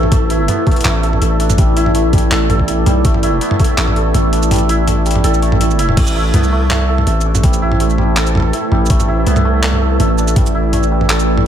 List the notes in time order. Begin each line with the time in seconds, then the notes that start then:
Already playing: A1 G3 A3 B3 D4 E4 A4 B4
0.03 mid tom
0.12 A1 A3 D5, kick, closed hi-hat, mid tom
0.30 E4, closed hi-hat
0.48 B3, closed hi-hat, mid tom
0.67 A3, kick, closed hi-hat
0.71 closed hi-hat
0.76 closed hi-hat
0.81 closed hi-hat
0.85 A1 A3, clap, closed hi-hat, mid tom
1.03 A4, closed hi-hat
1.13 mid tom
1.22 A1 A4, closed hi-hat
1.40 D4, closed hi-hat
1.50 mid tom, shaker
1.58 G3, kick, closed hi-hat
1.77 E4, closed hi-hat
1.86 mid tom
1.95 A3, closed hi-hat
2.13 G3, kick, closed hi-hat, mid tom
2.18 closed hi-hat
2.31 A1 A4, clap, closed hi-hat
2.50 A4, closed hi-hat, mid tom
2.60 kick
2.68 E4, closed hi-hat
2.86 B1 G3, closed hi-hat, mid tom
3.05 A1 A3, kick, closed hi-hat
3.14 mid tom
3.23 E4, closed hi-hat
3.41 B3, closed hi-hat
3.51 mid tom
3.60 A3, kick, closed hi-hat
3.64 closed hi-hat
3.78 A1 A3, clap, closed hi-hat
3.88 mid tom
3.96 A4, closed hi-hat
4.14 A1 A4, closed hi-hat, mid tom
4.33 D4, closed hi-hat
4.43 shaker
4.51 G3, closed hi-hat, mid tom
4.54 closed hi-hat
4.56 closed hi-hat
4.58 closed hi-hat
4.69 E4, closed hi-hat
4.88 A3, closed hi-hat, mid tom
5.06 G3, closed hi-hat, shaker
5.11 closed hi-hat
5.16 mid tom
5.24 A1 A4, closed hi-hat
5.34 shaker
5.42 A3, closed hi-hat
5.52 mid tom
5.61 E4, closed hi-hat
5.70 shaker
5.79 E4, closed hi-hat
5.89 mid tom
5.97 A1 A3 E4 B4 C5, kick, closed hi-hat, mid tom, crash
6.07 shaker
6.16 E4
6.34 C2 B3, closed hi-hat, mid tom
6.43 shaker
6.52 A3
6.70 A3, clap, closed hi-hat, mid tom
6.89 A4
6.98 mid tom
7.07 A1 A4, closed hi-hat
7.21 shaker
7.25 D4
7.35 mid tom, shaker
7.43 A1 G3, kick, closed hi-hat
7.53 shaker
7.62 E4
7.72 mid tom
7.80 A3, closed hi-hat
7.90 shaker
7.98 G3, mid tom
8.17 A4, clap, closed hi-hat
8.26 shaker
8.35 A4, mid tom
8.37 mid tom
8.40 mid tom
8.42 mid tom
8.53 E4, closed hi-hat
8.71 A1 G3, mid tom
8.86 shaker
8.90 A1 A3 D5, kick, closed hi-hat
9.00 mid tom, shaker
9.08 E4
9.27 C2 B3, closed hi-hat
9.36 mid tom, shaker
9.45 A3
9.63 A3, clap, closed hi-hat
9.73 mid tom
9.81 A4
10.00 A1 A4, closed hi-hat, mid tom
10.18 D4, shaker
10.28 shaker
10.36 A1 G3, kick, closed hi-hat, mid tom
10.46 shaker
10.55 E4
10.73 A3, closed hi-hat, mid tom
10.83 shaker
10.91 G3
11.01 mid tom
11.10 A4, clap, closed hi-hat
11.19 shaker
11.28 E4
11.38 mid tom